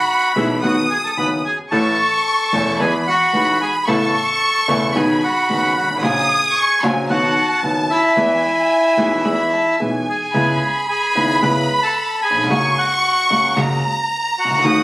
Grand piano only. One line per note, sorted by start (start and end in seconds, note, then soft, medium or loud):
0.36 0.59 B1 medium
0.36 0.59 B2 medium
0.36 0.59 E3 medium
0.36 0.59 G#3 medium
0.36 0.59 B3 medium
0.36 0.59 G#4 medium
0.63 0.86 B1 medium
0.63 0.86 B2 medium
0.63 0.86 D#3 medium
0.63 0.86 F#3 medium
0.63 0.86 B3 medium
0.63 0.86 F#4 medium
1.17 1.40 F#1 soft
1.17 1.40 F#2 soft
1.17 1.40 D#3 soft
1.17 1.40 F#3 soft
1.17 1.40 B3 soft
1.17 1.40 F#4 soft
1.72 1.94 A1 medium
1.72 1.94 A2 medium
1.72 1.94 E3 medium
1.72 1.95 A3 medium
1.72 1.94 C#4 medium
1.72 1.95 A4 medium
2.53 2.76 E1 medium
2.53 2.76 E2 medium
2.53 2.75 E3 medium
2.53 2.76 A3 medium
2.53 2.76 C#4 medium
2.53 2.76 A4 medium
2.80 3.03 E2 medium
2.80 3.03 E3 medium
2.80 3.03 G#3 medium
2.80 3.03 B3 medium
2.80 3.03 G#4 medium
3.33 3.56 B1 soft
3.33 3.57 B2 soft
3.33 3.56 E3 soft
3.33 3.56 G#3 soft
3.33 3.56 B3 soft
3.33 3.57 G#4 soft
3.87 4.11 A1 medium
3.87 4.11 A2 medium
3.87 4.10 C#3 medium
3.87 4.11 A3 medium
3.87 4.11 B3 medium
3.87 4.11 E4 medium
4.68 4.91 E1 medium
4.68 4.91 E2 medium
4.68 4.91 C#3 medium
4.68 4.91 A3 medium
4.68 4.91 B3 medium
4.68 4.91 E4 medium
4.95 5.18 B1 medium
4.95 5.18 B2 medium
4.95 5.18 D#3 medium
4.95 5.18 G#3 medium
4.95 5.18 B3 medium
4.95 5.18 F#4 medium
5.50 5.72 F#1 medium
5.50 5.72 F#2 medium
5.50 5.72 D#3 soft
5.50 5.72 G#3 soft
5.50 5.72 B3 soft
5.50 5.72 F#4 soft
5.83 5.90 G1 soft
5.90 5.96 G#1 medium
5.96 6.03 A1 medium
6.02 6.25 A#1 medium
6.02 6.25 A#2 medium
6.02 6.25 C#3 medium
6.02 6.25 F#3 medium
6.02 6.25 A#3 medium
6.02 6.25 F#4 medium
6.83 7.06 A#1 medium
6.83 7.06 A#2 medium
6.83 7.06 C#3 medium
6.83 7.06 F#3 medium
6.83 7.06 A#3 medium
6.83 7.06 F#4 medium
7.10 7.33 B1 medium
7.10 7.33 B2 medium
7.10 7.32 D#3 medium
7.10 7.32 F#3 medium
7.10 7.33 B3 medium
7.10 7.33 F#4 medium
7.63 7.86 F#1 medium
7.63 7.86 F#2 soft
7.63 7.86 D#3 soft
7.63 7.86 F#3 soft
7.63 7.86 B3 soft
7.63 7.86 F#4 soft
8.17 8.40 E2 medium
8.17 8.40 E3 medium
8.17 8.40 G#3 medium
8.17 8.40 B3 medium
8.17 8.40 G#4 medium
8.97 9.21 B1 medium
8.97 9.21 B2 medium
8.97 9.20 E3 medium
8.97 9.21 G#3 medium
8.97 9.21 B3 medium
8.97 9.21 G#4 medium
9.25 9.48 E2 medium
9.25 9.48 E3 medium
9.25 9.48 G#3 medium
9.25 9.48 B3 medium
9.25 9.48 G#4 medium
9.80 10.03 B1 soft
9.80 10.03 B2 medium
9.80 10.03 E3 soft
9.80 10.03 G#3 soft
9.80 10.03 B3 soft
9.80 10.03 G#4 soft
10.34 10.57 C#2 medium
10.34 10.57 C#3 medium
10.34 10.57 G#3 medium
10.34 10.57 B3 medium
10.34 10.57 E4 medium
11.15 11.38 G#1 medium
11.15 11.38 G#2 medium
11.15 11.38 C#3 soft
11.15 11.38 G#3 soft
11.15 11.38 B3 soft
11.15 11.38 E4 soft
11.42 11.65 C#2 medium
11.42 11.65 C#3 medium
11.42 11.65 G#3 medium
11.42 11.65 B3 medium
11.42 11.65 E4 medium
12.30 12.37 A#1 soft
12.37 12.44 B1 medium
12.44 12.50 C2 medium
12.50 12.73 C#2 medium
12.50 12.73 C#3 medium
12.50 12.73 G#3 medium
12.50 12.73 A#3 medium
12.50 12.73 F#4 medium
13.30 13.53 C#2 medium
13.30 13.53 C#3 medium
13.30 13.53 G#3 soft
13.30 13.53 A#3 soft
13.30 13.54 F#4 soft
13.56 13.80 C#2 medium
13.56 13.80 C#3 medium
13.56 13.80 G#3 medium
13.56 13.80 A#3 medium
13.56 13.80 F#4 medium
14.45 14.51 C2 soft
14.51 14.58 C#2 medium
14.58 14.65 D2 medium
14.64 14.83 D#2 medium
14.64 14.83 D#3 medium
14.64 14.83 F#3 medium
14.64 14.83 A3 medium
14.64 14.83 F#4 medium